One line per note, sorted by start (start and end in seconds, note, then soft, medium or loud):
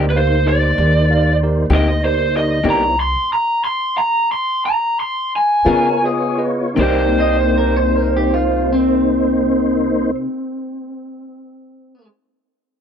0.00 0.74 D2 medium
0.00 2.60 A#3 medium
0.00 2.60 D#4 medium
0.00 2.60 C5 medium
0.10 0.16 B4 medium
0.14 0.38 D#4 medium
0.14 0.39 G4 soft
0.14 0.39 A#4 medium
0.14 0.48 C5 loud
0.14 0.39 F5 medium
0.46 0.69 D#4 medium
0.46 0.70 G4 medium
0.46 0.70 A#4 medium
0.46 0.70 C5 medium
0.46 1.36 D5 loud
0.78 1.68 D#2 medium
0.78 1.02 D#4 soft
0.78 1.02 G4 medium
0.78 1.02 A#4 soft
0.78 1.02 D5 medium
1.10 1.32 D#4 medium
1.10 1.32 G4 medium
1.10 1.32 A#4 medium
1.10 1.33 F5 medium
1.43 1.64 D#4 medium
1.43 1.64 G4 medium
1.43 1.64 A#4 medium
1.43 1.65 D5 medium
1.70 2.61 D2 medium
1.70 1.90 C3 medium
1.70 1.89 A#3 medium
1.70 1.89 D#4 medium
1.70 1.95 D#4 medium
1.70 1.89 G4 medium
1.70 1.95 G4 medium
1.70 1.95 A#4 soft
1.70 1.95 D#5 medium
1.75 2.01 D#5 loud
2.04 2.26 D#4 soft
2.04 2.27 G4 soft
2.04 2.26 A#4 soft
2.04 2.35 C5 loud
2.04 2.26 D5 medium
2.36 2.58 D#4 medium
2.36 2.58 G4 soft
2.36 2.58 A#4 soft
2.36 2.58 D5 medium
2.36 2.64 D#5 medium
2.64 3.13 C2 medium
2.64 2.83 C3 medium
2.64 2.83 A#3 medium
2.64 2.96 B3 medium
2.64 2.83 D#4 medium
2.64 2.89 D#4 medium
2.64 2.96 E4 medium
2.64 2.83 G4 medium
2.64 2.89 G4 medium
2.64 2.89 A#4 medium
2.64 2.96 C#5 medium
2.64 2.89 D5 medium
2.70 2.98 A#5 medium
3.00 3.29 C6 medium
3.33 3.62 A#5 medium
3.64 3.94 C6 medium
3.98 4.28 A#5 loud
4.32 4.62 C6 medium
4.66 4.96 A#5 medium
5.00 5.31 C6 medium
5.36 6.03 G#5 medium
5.65 6.74 C#3 medium
5.65 5.88 C#3 medium
5.65 6.76 B3 medium
5.65 5.88 B3 medium
5.65 6.76 F4 medium
5.65 5.93 F4 medium
5.65 5.87 F4 medium
5.65 5.93 G#4 medium
5.65 5.88 G#4 medium
5.65 6.01 A#4 medium
5.65 5.93 B4 medium
5.65 6.76 C#5 medium
5.65 5.94 D#5 medium
6.02 6.30 F4 medium
6.02 6.30 G#4 medium
6.02 6.40 G#4 medium
6.02 6.31 B4 medium
6.02 6.31 D#5 medium
6.38 6.67 F4 medium
6.38 6.67 G#4 medium
6.38 6.68 B4 medium
6.38 6.67 D#5 medium
6.74 10.11 C2 medium
6.74 10.26 C3 medium
6.74 10.11 A#3 medium
6.74 10.08 D#4 medium
6.74 10.11 D#4 medium
6.74 10.10 G4 medium
6.74 10.11 A#4 medium
6.74 10.11 C5 medium
6.78 10.28 A#3 medium
6.78 10.31 D#4 medium
6.78 10.15 C5 medium
6.78 10.13 D5 medium
6.83 10.33 G4 medium
7.20 7.37 D#5 medium
7.37 7.55 C5 medium
7.58 7.76 A#4 medium
7.76 7.95 C5 medium
7.95 8.13 A#4 medium
8.17 8.33 G4 medium
8.34 8.70 F4 medium
8.73 12.07 C4 medium